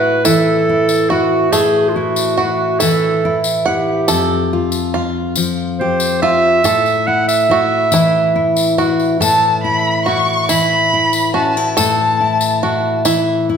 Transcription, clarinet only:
Already playing: B4
0.25 A4
1.10 F#4
1.52 G#4
1.89 F4
1.95 F#4
2.80 A4
3.65 G4
5.80 C5
6.22 E5
7.07 F#5
7.28 E5

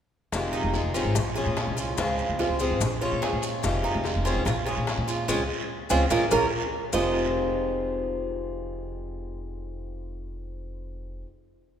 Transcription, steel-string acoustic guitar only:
0.32 C3 D#3 G#3 C4 F4
0.73 D#3 G#3 C4 F4
0.94 D#3 G#3 C4 F4
1.15 muted steel-string acoustic guitar stroke
1.36 G#3 C#4 F4
1.57 F3 G#3 C#4 F4
1.97 C#3 F3 G#3 C4 F4
2.39 F3 G#3 C4 F4
2.60 F3 G#3 C4 F4
2.81 muted steel-string acoustic guitar stroke
3.02 G#3 C#4 F4
3.22 F3 G#3 C#4 F4
3.63 C3 D#3 G#3 C4 F4
4.04 D#3 G#3 C4 F4
4.25 D#3 G#3 C4 F4
4.45 muted steel-string acoustic guitar stroke
4.66 G#3 C#4 F4
4.87 F3 G#3 C#4 F4
5.28 G#3 C4 C#4
5.90 G#3 C4 C#4
6.10 G#3 A#3 C#4
6.31 G#3 A#3 C#4
6.93 F2 C3 D#3 G#3 C4 F4

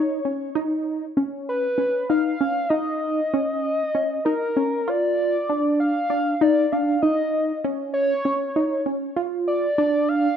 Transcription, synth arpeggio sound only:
Already playing: D#4
0.25 C#4
0.55 D#4
1.17 C#4
1.78 C#4
2.10 D#4
2.41 C#4
2.70 D#4
3.34 C#4
3.95 C#4
4.26 D#4
4.57 C#4
4.88 F4
5.50 D4
6.10 D4
6.41 D#4
6.73 D4
7.03 D#4
7.64 C#4
8.25 C#4
8.56 D#4
8.86 C#4
9.16 F4
9.78 D4

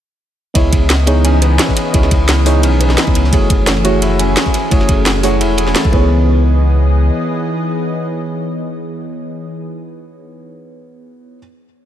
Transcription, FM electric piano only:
0.54 B3 E4 G#4 C#5 D#5
1.06 B3 D#4 E4 G#4 C#5
1.93 B3 E4 G#4 C#5 D#5
2.45 B3 D#4 E4 G#4 C#5
3.31 A3 E4 F#4 G#4 C#5
3.84 A3 E4 F#4 G#4 C#5
4.70 A3 E4 F#4 G#4 C#5
5.23 A3 E4 F#4 G#4 C#5
5.91 B3 D#4 E4 G#4 C#5

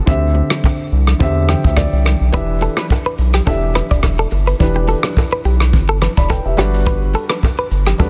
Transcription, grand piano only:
0.06 D3 C4 G4 E5
1.19 D3 C4 G4 E5
1.49 G5
1.64 E5
1.77 D5
2.32 E3 D4 G4 E5
3.46 E3 D4 G4 E5
4.59 E3 D4 G4 B4
6.17 D5 B5
6.30 B4 G5
6.46 G4 E5
6.57 G3 D4 F#4 B4
7.98 G3 D4 F#4 B4

